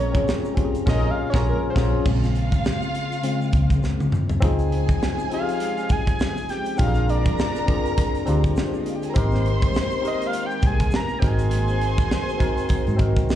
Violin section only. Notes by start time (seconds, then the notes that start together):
Already playing: A#4 A#5
0.86 A#4 A#5
1.33 A#4 A#5
1.76 A#4 A#5
2.06 F4 F5
4.42 G#4 G#5
6.80 A#4 A#5
8.65 C4 C5
8.74 D4 D5
8.81 D#4 D#5
8.87 F4 F5
8.95 G4 G5
9.03 G#4 G#5
9.10 A#4 A#5
9.15 C5 C6
11.22 C5 C6